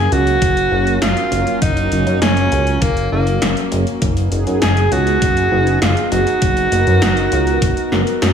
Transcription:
Already playing: F#3 A#3 C#4 G#4
0.12 C#2 F#4, closed hi-hat
0.27 closed hi-hat
0.42 F#1, kick, closed hi-hat
0.57 closed hi-hat
0.72 F#1
0.87 closed hi-hat
1.02 F#1 F4, snare, closed hi-hat
1.17 closed hi-hat
1.32 F#1, closed hi-hat
1.47 closed hi-hat
1.62 F#1 D#4, kick, closed hi-hat
1.77 closed hi-hat
1.92 F#1, closed hi-hat
2.07 F#2, closed hi-hat
2.22 F#1 C#4, snare, closed hi-hat
2.37 closed hi-hat
2.52 C#2, closed hi-hat
2.67 closed hi-hat
2.82 F#1 A#3, kick, closed hi-hat
2.97 closed hi-hat
3.12 F#1 A#3
3.27 closed hi-hat
3.42 F#1, snare, closed hi-hat
3.57 closed hi-hat
3.72 F#1, closed hi-hat
3.87 closed hi-hat
4.02 F#1 B3 D#4 G#4, kick, closed hi-hat
4.17 closed hi-hat
4.32 F#1, closed hi-hat
4.47 F#2, closed hi-hat
4.62 F#1 G#4, snare, closed hi-hat
4.77 closed hi-hat
4.92 C#2 F#4, closed hi-hat
5.07 closed hi-hat
5.22 F#1, kick, closed hi-hat
5.37 closed hi-hat
5.52 F#1
5.67 closed hi-hat
5.81 F#1 F4, snare, closed hi-hat
5.97 closed hi-hat
6.11 F#1 F#4, closed hi-hat
6.27 closed hi-hat
6.42 F#1 A#4, kick, closed hi-hat
6.57 closed hi-hat
6.72 F#1, closed hi-hat
6.87 F#2, closed hi-hat
7.02 F#1, snare, closed hi-hat
7.17 closed hi-hat
7.32 C#2, closed hi-hat
7.47 closed hi-hat
7.62 F#1, kick, closed hi-hat
7.77 closed hi-hat
7.92 F#1, snare
8.07 closed hi-hat
8.22 F#2, snare, closed hi-hat

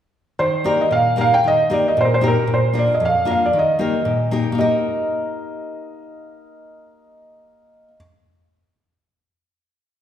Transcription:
0.39 D#3 C5
0.64 A#3 D#4 G4 A#4 D5
0.81 D#5
0.91 A#2 F5
1.16 A#3 D#4 G4 A#4
1.21 F5
1.34 G5
1.44 D#3 D#5
1.70 A#3 D#4 G4 A#4 D5
1.88 D#5
1.97 A#2 C5
2.05 A#4
2.14 C5
2.21 A#3 D#4 G4 A#4
2.28 A#4
2.47 A#2
2.54 C5
2.73 A#3 D4 F4 A#4
2.79 D5
2.94 D#5
3.00 F2
3.05 F5
3.25 A#3 D4 F4 A#4
3.31 F5
3.46 D5
3.53 D#3
3.59 D#5
3.79 A#3 D#4 G4 A#4
4.05 A#2
4.31 A#3 D#4 G4 A#4
4.52 A#3 D#4
4.58 G4 A#4 D#5

